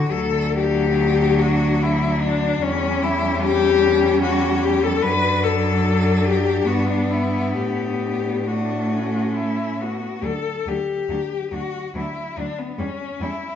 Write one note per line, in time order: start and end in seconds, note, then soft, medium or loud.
0.00 0.10 D3 medium
0.00 0.13 F#4 medium
0.11 2.58 D2 medium
0.11 2.63 F#3 medium
0.11 2.58 D4 medium
0.11 0.56 A4 medium
0.56 1.43 G4 medium
1.41 1.84 F#4 medium
1.83 2.23 E4 medium
2.21 2.64 D4 medium
2.61 5.04 E2 medium
2.61 5.02 G3 medium
2.61 4.99 C#4 medium
2.61 3.04 C#4 medium
3.03 3.44 E4 medium
3.43 4.21 G4 loud
4.22 4.65 F#4 medium
4.63 4.85 G4 medium
4.83 5.04 A4 medium
5.02 6.65 F#2 medium
5.02 6.67 F#3 medium
5.02 8.34 D4 medium
5.02 5.45 B4 loud
5.44 6.26 A4 medium
6.25 6.69 G4 medium
6.66 7.56 G2 medium
6.66 8.49 B3 medium
6.66 6.90 F#4 medium
6.89 7.12 D4 medium
7.11 7.55 E4 medium
7.55 10.03 A2 medium
7.55 8.49 G4 medium
8.47 10.03 A3 soft
8.47 8.95 D4 medium
8.47 9.38 F#4 medium
8.94 9.82 C#4 soft
9.36 9.83 E4 medium
9.81 10.24 B3 soft
9.81 10.25 F#4 medium
10.23 10.31 D2 soft
10.23 10.31 F#3 soft
10.23 10.32 D4 soft
10.23 10.70 A4 medium
10.67 10.75 D2 soft
10.67 10.75 F#3 soft
10.67 10.76 D4 soft
10.67 11.55 G4 medium
11.09 11.17 D2 soft
11.09 11.17 F#3 soft
11.09 11.18 D4 soft
11.51 11.60 D2 soft
11.51 11.59 F#3 soft
11.51 11.61 D4 soft
11.51 11.95 F#4 medium
11.95 12.03 D2 soft
11.95 12.03 F#3 soft
11.95 12.04 D4 soft
11.95 12.40 E4 medium
12.37 12.45 D2 soft
12.37 12.45 F#3 soft
12.37 12.46 D4 soft
12.37 12.60 D4 medium
12.59 12.81 B3 medium
12.79 12.87 E2 soft
12.79 12.87 G3 soft
12.79 13.23 C#4 medium
12.79 12.88 C#4 soft
13.21 13.29 E2 soft
13.21 13.29 G3 soft
13.21 13.30 C#4 soft
13.21 13.55 E4 medium